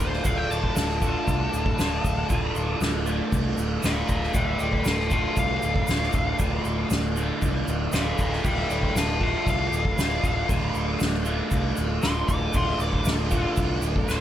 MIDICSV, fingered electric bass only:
0, 0, Header, 1, 2, 480
1, 0, Start_track
1, 0, Key_signature, -1, "minor"
1, 0, Tempo, 512821
1, 233, Time_signature, 4, 2, 24, 8
1, 13296, End_track
2, 0, Start_track
2, 0, Title_t, "Fingered electric bass"
2, 0, Program_c, 0, 33
2, 0, Note_on_c, 0, 26, 82
2, 174, Note_off_c, 0, 26, 0
2, 232, Note_on_c, 0, 26, 105
2, 414, Note_off_c, 0, 26, 0
2, 474, Note_on_c, 0, 26, 67
2, 655, Note_off_c, 0, 26, 0
2, 712, Note_on_c, 0, 26, 88
2, 1075, Note_off_c, 0, 26, 0
2, 1194, Note_on_c, 0, 36, 94
2, 1375, Note_off_c, 0, 36, 0
2, 1438, Note_on_c, 0, 26, 95
2, 1618, Note_off_c, 0, 26, 0
2, 1673, Note_on_c, 0, 26, 79
2, 1855, Note_off_c, 0, 26, 0
2, 1915, Note_on_c, 0, 26, 90
2, 2096, Note_off_c, 0, 26, 0
2, 2151, Note_on_c, 0, 26, 96
2, 2333, Note_off_c, 0, 26, 0
2, 2393, Note_on_c, 0, 26, 77
2, 2575, Note_off_c, 0, 26, 0
2, 2626, Note_on_c, 0, 26, 86
2, 2991, Note_off_c, 0, 26, 0
2, 3112, Note_on_c, 0, 36, 97
2, 3293, Note_off_c, 0, 36, 0
2, 3346, Note_on_c, 0, 26, 85
2, 3530, Note_off_c, 0, 26, 0
2, 3589, Note_on_c, 0, 26, 79
2, 3772, Note_off_c, 0, 26, 0
2, 3828, Note_on_c, 0, 26, 85
2, 4011, Note_off_c, 0, 26, 0
2, 4064, Note_on_c, 0, 26, 91
2, 4248, Note_off_c, 0, 26, 0
2, 4311, Note_on_c, 0, 26, 76
2, 4493, Note_off_c, 0, 26, 0
2, 4548, Note_on_c, 0, 26, 87
2, 4911, Note_off_c, 0, 26, 0
2, 5028, Note_on_c, 0, 36, 81
2, 5211, Note_off_c, 0, 36, 0
2, 5274, Note_on_c, 0, 26, 82
2, 5454, Note_off_c, 0, 26, 0
2, 5507, Note_on_c, 0, 26, 75
2, 5690, Note_off_c, 0, 26, 0
2, 5748, Note_on_c, 0, 26, 80
2, 5930, Note_off_c, 0, 26, 0
2, 5986, Note_on_c, 0, 26, 95
2, 6169, Note_off_c, 0, 26, 0
2, 6227, Note_on_c, 0, 26, 69
2, 6409, Note_off_c, 0, 26, 0
2, 6464, Note_on_c, 0, 26, 88
2, 6828, Note_off_c, 0, 26, 0
2, 6945, Note_on_c, 0, 36, 84
2, 7128, Note_off_c, 0, 36, 0
2, 7190, Note_on_c, 0, 26, 94
2, 7370, Note_off_c, 0, 26, 0
2, 7421, Note_on_c, 0, 26, 72
2, 7605, Note_off_c, 0, 26, 0
2, 7664, Note_on_c, 0, 26, 75
2, 7847, Note_off_c, 0, 26, 0
2, 7906, Note_on_c, 0, 26, 92
2, 8088, Note_off_c, 0, 26, 0
2, 8144, Note_on_c, 0, 26, 73
2, 8327, Note_off_c, 0, 26, 0
2, 8379, Note_on_c, 0, 26, 92
2, 8745, Note_off_c, 0, 26, 0
2, 8863, Note_on_c, 0, 36, 98
2, 9046, Note_off_c, 0, 36, 0
2, 9094, Note_on_c, 0, 26, 93
2, 9280, Note_off_c, 0, 26, 0
2, 9336, Note_on_c, 0, 26, 76
2, 9522, Note_off_c, 0, 26, 0
2, 9582, Note_on_c, 0, 26, 78
2, 9766, Note_off_c, 0, 26, 0
2, 9819, Note_on_c, 0, 26, 114
2, 10004, Note_off_c, 0, 26, 0
2, 10060, Note_on_c, 0, 26, 83
2, 10244, Note_off_c, 0, 26, 0
2, 10307, Note_on_c, 0, 26, 95
2, 10670, Note_off_c, 0, 26, 0
2, 10777, Note_on_c, 0, 36, 88
2, 10963, Note_off_c, 0, 36, 0
2, 11028, Note_on_c, 0, 26, 102
2, 11210, Note_off_c, 0, 26, 0
2, 11268, Note_on_c, 0, 26, 78
2, 11449, Note_off_c, 0, 26, 0
2, 11499, Note_on_c, 0, 26, 90
2, 11684, Note_off_c, 0, 26, 0
2, 11738, Note_on_c, 0, 26, 102
2, 11923, Note_off_c, 0, 26, 0
2, 11973, Note_on_c, 0, 26, 83
2, 12160, Note_off_c, 0, 26, 0
2, 12216, Note_on_c, 0, 26, 102
2, 12584, Note_off_c, 0, 26, 0
2, 12708, Note_on_c, 0, 36, 99
2, 12890, Note_off_c, 0, 36, 0
2, 12938, Note_on_c, 0, 26, 97
2, 13124, Note_off_c, 0, 26, 0
2, 13181, Note_on_c, 0, 26, 86
2, 13296, Note_off_c, 0, 26, 0
2, 13296, End_track
0, 0, End_of_file